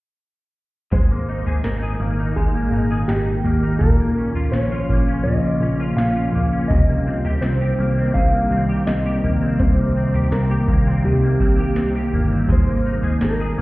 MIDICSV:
0, 0, Header, 1, 6, 480
1, 0, Start_track
1, 0, Tempo, 722892
1, 612, Time_signature, 4, 2, 24, 8
1, 9042, End_track
2, 0, Start_track
2, 0, Title_t, "Clean electric guitar"
2, 0, Program_c, 0, 27
2, 615, Note_on_c, 0, 72, 76
2, 1090, Note_off_c, 0, 72, 0
2, 1092, Note_on_c, 0, 70, 73
2, 1566, Note_off_c, 0, 70, 0
2, 1569, Note_on_c, 0, 68, 69
2, 2042, Note_off_c, 0, 68, 0
2, 2045, Note_on_c, 0, 67, 75
2, 2383, Note_off_c, 0, 67, 0
2, 2517, Note_on_c, 0, 70, 80
2, 2997, Note_off_c, 0, 70, 0
2, 2999, Note_on_c, 0, 73, 82
2, 3474, Note_off_c, 0, 73, 0
2, 3477, Note_on_c, 0, 75, 93
2, 3959, Note_off_c, 0, 75, 0
2, 3962, Note_on_c, 0, 77, 88
2, 4301, Note_off_c, 0, 77, 0
2, 4437, Note_on_c, 0, 75, 88
2, 4923, Note_on_c, 0, 72, 88
2, 4939, Note_off_c, 0, 75, 0
2, 5406, Note_on_c, 0, 77, 82
2, 5422, Note_off_c, 0, 72, 0
2, 5886, Note_off_c, 0, 77, 0
2, 5888, Note_on_c, 0, 75, 78
2, 6343, Note_off_c, 0, 75, 0
2, 6372, Note_on_c, 0, 72, 79
2, 6852, Note_off_c, 0, 72, 0
2, 6855, Note_on_c, 0, 70, 76
2, 7336, Note_on_c, 0, 67, 62
2, 7348, Note_off_c, 0, 70, 0
2, 8027, Note_off_c, 0, 67, 0
2, 8316, Note_on_c, 0, 72, 75
2, 8791, Note_off_c, 0, 72, 0
2, 8794, Note_on_c, 0, 70, 72
2, 9042, Note_off_c, 0, 70, 0
2, 9042, End_track
3, 0, Start_track
3, 0, Title_t, "Clean electric guitar"
3, 0, Program_c, 1, 27
3, 612, Note_on_c, 1, 56, 70
3, 735, Note_on_c, 1, 58, 48
3, 853, Note_on_c, 1, 63, 52
3, 974, Note_on_c, 1, 68, 52
3, 1083, Note_off_c, 1, 63, 0
3, 1091, Note_on_c, 1, 63, 53
3, 1202, Note_off_c, 1, 68, 0
3, 1210, Note_on_c, 1, 68, 59
3, 1327, Note_off_c, 1, 58, 0
3, 1329, Note_on_c, 1, 58, 53
3, 1445, Note_off_c, 1, 63, 0
3, 1453, Note_on_c, 1, 63, 58
3, 1564, Note_off_c, 1, 56, 0
3, 1572, Note_on_c, 1, 56, 64
3, 1685, Note_off_c, 1, 58, 0
3, 1688, Note_on_c, 1, 58, 56
3, 1801, Note_off_c, 1, 63, 0
3, 1809, Note_on_c, 1, 63, 53
3, 1922, Note_off_c, 1, 68, 0
3, 1930, Note_on_c, 1, 68, 58
3, 2041, Note_off_c, 1, 63, 0
3, 2049, Note_on_c, 1, 63, 54
3, 2171, Note_off_c, 1, 68, 0
3, 2284, Note_off_c, 1, 58, 0
3, 2287, Note_on_c, 1, 58, 56
3, 2403, Note_off_c, 1, 63, 0
3, 2411, Note_on_c, 1, 63, 50
3, 2530, Note_on_c, 1, 46, 70
3, 2579, Note_off_c, 1, 63, 0
3, 2580, Note_off_c, 1, 56, 0
3, 2650, Note_off_c, 1, 58, 0
3, 2653, Note_on_c, 1, 58, 49
3, 2771, Note_on_c, 1, 61, 50
3, 2891, Note_on_c, 1, 65, 51
3, 3002, Note_off_c, 1, 61, 0
3, 3010, Note_on_c, 1, 61, 51
3, 3123, Note_off_c, 1, 65, 0
3, 3131, Note_on_c, 1, 65, 60
3, 3247, Note_off_c, 1, 58, 0
3, 3250, Note_on_c, 1, 58, 54
3, 3362, Note_off_c, 1, 61, 0
3, 3370, Note_on_c, 1, 61, 61
3, 3478, Note_off_c, 1, 46, 0
3, 3486, Note_on_c, 1, 46, 61
3, 3604, Note_off_c, 1, 58, 0
3, 3607, Note_on_c, 1, 58, 52
3, 3722, Note_off_c, 1, 61, 0
3, 3730, Note_on_c, 1, 61, 54
3, 3842, Note_off_c, 1, 65, 0
3, 3850, Note_on_c, 1, 65, 59
3, 3959, Note_off_c, 1, 61, 0
3, 3967, Note_on_c, 1, 61, 53
3, 4080, Note_off_c, 1, 65, 0
3, 4088, Note_on_c, 1, 65, 59
3, 4207, Note_off_c, 1, 58, 0
3, 4209, Note_on_c, 1, 58, 53
3, 4322, Note_off_c, 1, 61, 0
3, 4329, Note_on_c, 1, 61, 52
3, 4448, Note_off_c, 1, 46, 0
3, 4450, Note_on_c, 1, 48, 69
3, 4498, Note_off_c, 1, 65, 0
3, 4499, Note_off_c, 1, 61, 0
3, 4567, Note_off_c, 1, 58, 0
3, 4569, Note_on_c, 1, 58, 52
3, 4691, Note_on_c, 1, 60, 51
3, 4812, Note_on_c, 1, 67, 54
3, 4925, Note_off_c, 1, 60, 0
3, 4933, Note_on_c, 1, 60, 55
3, 5044, Note_off_c, 1, 67, 0
3, 5052, Note_on_c, 1, 67, 54
3, 5171, Note_off_c, 1, 58, 0
3, 5174, Note_on_c, 1, 58, 52
3, 5286, Note_off_c, 1, 60, 0
3, 5294, Note_on_c, 1, 60, 52
3, 5407, Note_off_c, 1, 48, 0
3, 5415, Note_on_c, 1, 48, 68
3, 5532, Note_off_c, 1, 58, 0
3, 5534, Note_on_c, 1, 58, 54
3, 5645, Note_off_c, 1, 60, 0
3, 5653, Note_on_c, 1, 60, 52
3, 5762, Note_off_c, 1, 67, 0
3, 5770, Note_on_c, 1, 67, 60
3, 5884, Note_off_c, 1, 60, 0
3, 5892, Note_on_c, 1, 60, 54
3, 6006, Note_off_c, 1, 67, 0
3, 6014, Note_on_c, 1, 67, 64
3, 6131, Note_off_c, 1, 58, 0
3, 6134, Note_on_c, 1, 58, 57
3, 6244, Note_off_c, 1, 60, 0
3, 6252, Note_on_c, 1, 60, 54
3, 6366, Note_off_c, 1, 48, 0
3, 6374, Note_on_c, 1, 48, 68
3, 6492, Note_off_c, 1, 58, 0
3, 6494, Note_on_c, 1, 58, 50
3, 6606, Note_off_c, 1, 60, 0
3, 6614, Note_on_c, 1, 60, 54
3, 6726, Note_off_c, 1, 67, 0
3, 6734, Note_on_c, 1, 67, 53
3, 6847, Note_off_c, 1, 60, 0
3, 6855, Note_on_c, 1, 60, 53
3, 6965, Note_off_c, 1, 67, 0
3, 6973, Note_on_c, 1, 67, 55
3, 7093, Note_off_c, 1, 58, 0
3, 7096, Note_on_c, 1, 58, 59
3, 7209, Note_off_c, 1, 60, 0
3, 7217, Note_on_c, 1, 60, 61
3, 7330, Note_off_c, 1, 48, 0
3, 7338, Note_on_c, 1, 48, 69
3, 7457, Note_off_c, 1, 58, 0
3, 7459, Note_on_c, 1, 58, 55
3, 7565, Note_off_c, 1, 60, 0
3, 7573, Note_on_c, 1, 60, 54
3, 7686, Note_off_c, 1, 67, 0
3, 7694, Note_on_c, 1, 67, 54
3, 7809, Note_off_c, 1, 60, 0
3, 7817, Note_on_c, 1, 60, 49
3, 7929, Note_off_c, 1, 67, 0
3, 7937, Note_on_c, 1, 67, 58
3, 8053, Note_off_c, 1, 58, 0
3, 8056, Note_on_c, 1, 58, 52
3, 8167, Note_off_c, 1, 60, 0
3, 8175, Note_on_c, 1, 60, 50
3, 8293, Note_on_c, 1, 56, 69
3, 8341, Note_off_c, 1, 60, 0
3, 8342, Note_off_c, 1, 67, 0
3, 8343, Note_off_c, 1, 48, 0
3, 8415, Note_off_c, 1, 58, 0
3, 8418, Note_on_c, 1, 58, 46
3, 8536, Note_on_c, 1, 63, 54
3, 8652, Note_on_c, 1, 68, 54
3, 8767, Note_off_c, 1, 63, 0
3, 8775, Note_on_c, 1, 63, 50
3, 8892, Note_off_c, 1, 68, 0
3, 8899, Note_on_c, 1, 68, 56
3, 9013, Note_off_c, 1, 58, 0
3, 9015, Note_on_c, 1, 58, 58
3, 9042, Note_off_c, 1, 56, 0
3, 9042, Note_off_c, 1, 58, 0
3, 9042, Note_off_c, 1, 63, 0
3, 9042, Note_off_c, 1, 68, 0
3, 9042, End_track
4, 0, Start_track
4, 0, Title_t, "Ambient pad"
4, 0, Program_c, 2, 92
4, 612, Note_on_c, 2, 63, 84
4, 613, Note_on_c, 2, 46, 77
4, 615, Note_on_c, 2, 51, 64
4, 616, Note_on_c, 2, 58, 75
4, 618, Note_on_c, 2, 44, 80
4, 2513, Note_off_c, 2, 46, 0
4, 2513, Note_off_c, 2, 63, 0
4, 2514, Note_off_c, 2, 51, 0
4, 2515, Note_off_c, 2, 58, 0
4, 2516, Note_off_c, 2, 44, 0
4, 2522, Note_on_c, 2, 65, 83
4, 2523, Note_on_c, 2, 49, 74
4, 2524, Note_on_c, 2, 46, 78
4, 2524, Note_on_c, 2, 61, 74
4, 2526, Note_on_c, 2, 53, 71
4, 4428, Note_off_c, 2, 49, 0
4, 4428, Note_off_c, 2, 61, 0
4, 4428, Note_off_c, 2, 65, 0
4, 4429, Note_off_c, 2, 46, 0
4, 4429, Note_off_c, 2, 53, 0
4, 4448, Note_on_c, 2, 63, 88
4, 4451, Note_on_c, 2, 55, 73
4, 4452, Note_on_c, 2, 51, 68
4, 4452, Note_on_c, 2, 58, 72
4, 4455, Note_on_c, 2, 48, 76
4, 8265, Note_off_c, 2, 55, 0
4, 8267, Note_off_c, 2, 48, 0
4, 8284, Note_on_c, 2, 46, 72
4, 8285, Note_on_c, 2, 44, 76
4, 9042, Note_off_c, 2, 44, 0
4, 9042, Note_off_c, 2, 46, 0
4, 9042, Note_off_c, 2, 51, 0
4, 9042, Note_off_c, 2, 58, 0
4, 9042, Note_off_c, 2, 63, 0
4, 9042, End_track
5, 0, Start_track
5, 0, Title_t, "Analog synth bass"
5, 0, Program_c, 3, 38
5, 612, Note_on_c, 3, 32, 84
5, 1034, Note_off_c, 3, 32, 0
5, 1090, Note_on_c, 3, 32, 88
5, 1302, Note_off_c, 3, 32, 0
5, 1329, Note_on_c, 3, 32, 93
5, 1541, Note_off_c, 3, 32, 0
5, 1572, Note_on_c, 3, 32, 87
5, 1783, Note_off_c, 3, 32, 0
5, 1805, Note_on_c, 3, 32, 104
5, 2019, Note_off_c, 3, 32, 0
5, 2050, Note_on_c, 3, 32, 105
5, 2262, Note_off_c, 3, 32, 0
5, 2286, Note_on_c, 3, 32, 77
5, 2499, Note_off_c, 3, 32, 0
5, 2529, Note_on_c, 3, 34, 93
5, 2952, Note_off_c, 3, 34, 0
5, 3001, Note_on_c, 3, 34, 97
5, 3217, Note_off_c, 3, 34, 0
5, 3249, Note_on_c, 3, 34, 90
5, 3461, Note_off_c, 3, 34, 0
5, 3486, Note_on_c, 3, 34, 92
5, 3700, Note_off_c, 3, 34, 0
5, 3720, Note_on_c, 3, 34, 96
5, 3937, Note_off_c, 3, 34, 0
5, 3960, Note_on_c, 3, 34, 111
5, 4176, Note_off_c, 3, 34, 0
5, 4199, Note_on_c, 3, 34, 84
5, 4416, Note_off_c, 3, 34, 0
5, 4452, Note_on_c, 3, 36, 96
5, 4874, Note_off_c, 3, 36, 0
5, 4926, Note_on_c, 3, 36, 95
5, 5140, Note_off_c, 3, 36, 0
5, 5169, Note_on_c, 3, 36, 89
5, 5381, Note_off_c, 3, 36, 0
5, 5411, Note_on_c, 3, 36, 100
5, 5622, Note_off_c, 3, 36, 0
5, 5649, Note_on_c, 3, 36, 105
5, 5861, Note_off_c, 3, 36, 0
5, 5893, Note_on_c, 3, 36, 100
5, 6104, Note_off_c, 3, 36, 0
5, 6136, Note_on_c, 3, 34, 75
5, 6345, Note_off_c, 3, 34, 0
5, 6371, Note_on_c, 3, 36, 93
5, 6794, Note_off_c, 3, 36, 0
5, 6849, Note_on_c, 3, 36, 98
5, 7061, Note_off_c, 3, 36, 0
5, 7092, Note_on_c, 3, 36, 94
5, 7303, Note_off_c, 3, 36, 0
5, 7329, Note_on_c, 3, 36, 93
5, 7541, Note_off_c, 3, 36, 0
5, 7571, Note_on_c, 3, 36, 96
5, 7782, Note_off_c, 3, 36, 0
5, 7811, Note_on_c, 3, 36, 100
5, 8022, Note_off_c, 3, 36, 0
5, 8055, Note_on_c, 3, 31, 74
5, 8264, Note_off_c, 3, 31, 0
5, 8290, Note_on_c, 3, 32, 93
5, 8713, Note_off_c, 3, 32, 0
5, 8775, Note_on_c, 3, 32, 90
5, 8984, Note_off_c, 3, 32, 0
5, 9018, Note_on_c, 3, 32, 89
5, 9042, Note_off_c, 3, 32, 0
5, 9042, End_track
6, 0, Start_track
6, 0, Title_t, "Drums"
6, 609, Note_on_c, 9, 43, 87
6, 611, Note_on_c, 9, 36, 93
6, 676, Note_off_c, 9, 43, 0
6, 678, Note_off_c, 9, 36, 0
6, 970, Note_on_c, 9, 43, 61
6, 1036, Note_off_c, 9, 43, 0
6, 1089, Note_on_c, 9, 38, 95
6, 1156, Note_off_c, 9, 38, 0
6, 1572, Note_on_c, 9, 36, 80
6, 1573, Note_on_c, 9, 43, 48
6, 1638, Note_off_c, 9, 36, 0
6, 1640, Note_off_c, 9, 43, 0
6, 2050, Note_on_c, 9, 38, 106
6, 2117, Note_off_c, 9, 38, 0
6, 2292, Note_on_c, 9, 43, 62
6, 2359, Note_off_c, 9, 43, 0
6, 2530, Note_on_c, 9, 36, 90
6, 2530, Note_on_c, 9, 43, 95
6, 2596, Note_off_c, 9, 36, 0
6, 2597, Note_off_c, 9, 43, 0
6, 2890, Note_on_c, 9, 43, 59
6, 2957, Note_off_c, 9, 43, 0
6, 3011, Note_on_c, 9, 38, 94
6, 3077, Note_off_c, 9, 38, 0
6, 3249, Note_on_c, 9, 36, 83
6, 3316, Note_off_c, 9, 36, 0
6, 3493, Note_on_c, 9, 43, 55
6, 3559, Note_off_c, 9, 43, 0
6, 3973, Note_on_c, 9, 38, 111
6, 4040, Note_off_c, 9, 38, 0
6, 4216, Note_on_c, 9, 43, 63
6, 4283, Note_off_c, 9, 43, 0
6, 4452, Note_on_c, 9, 36, 88
6, 4453, Note_on_c, 9, 43, 97
6, 4519, Note_off_c, 9, 36, 0
6, 4520, Note_off_c, 9, 43, 0
6, 4814, Note_on_c, 9, 43, 62
6, 4880, Note_off_c, 9, 43, 0
6, 4930, Note_on_c, 9, 38, 92
6, 4996, Note_off_c, 9, 38, 0
6, 5407, Note_on_c, 9, 43, 56
6, 5411, Note_on_c, 9, 36, 77
6, 5473, Note_off_c, 9, 43, 0
6, 5478, Note_off_c, 9, 36, 0
6, 5891, Note_on_c, 9, 38, 106
6, 5958, Note_off_c, 9, 38, 0
6, 6137, Note_on_c, 9, 43, 60
6, 6203, Note_off_c, 9, 43, 0
6, 6371, Note_on_c, 9, 43, 94
6, 6372, Note_on_c, 9, 36, 86
6, 6437, Note_off_c, 9, 43, 0
6, 6439, Note_off_c, 9, 36, 0
6, 6733, Note_on_c, 9, 43, 55
6, 6799, Note_off_c, 9, 43, 0
6, 6854, Note_on_c, 9, 38, 93
6, 6920, Note_off_c, 9, 38, 0
6, 7091, Note_on_c, 9, 43, 65
6, 7092, Note_on_c, 9, 36, 85
6, 7158, Note_off_c, 9, 36, 0
6, 7158, Note_off_c, 9, 43, 0
6, 7333, Note_on_c, 9, 43, 58
6, 7399, Note_off_c, 9, 43, 0
6, 7571, Note_on_c, 9, 36, 83
6, 7638, Note_off_c, 9, 36, 0
6, 7810, Note_on_c, 9, 38, 101
6, 7876, Note_off_c, 9, 38, 0
6, 8054, Note_on_c, 9, 43, 62
6, 8120, Note_off_c, 9, 43, 0
6, 8293, Note_on_c, 9, 36, 89
6, 8293, Note_on_c, 9, 43, 85
6, 8359, Note_off_c, 9, 36, 0
6, 8359, Note_off_c, 9, 43, 0
6, 8653, Note_on_c, 9, 43, 58
6, 8719, Note_off_c, 9, 43, 0
6, 8772, Note_on_c, 9, 38, 92
6, 8838, Note_off_c, 9, 38, 0
6, 9042, End_track
0, 0, End_of_file